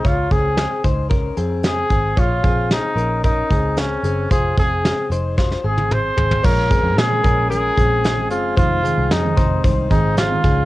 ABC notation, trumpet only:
X:1
M:4/4
L:1/8
Q:1/4=113
K:Bbdor
V:1 name="Trumpet"
F A2 z3 A2 | F2 E2 E2 D2 | A A2 z2 A c2 | B2 A2 A3 F |
F2 E2 z E F2 |]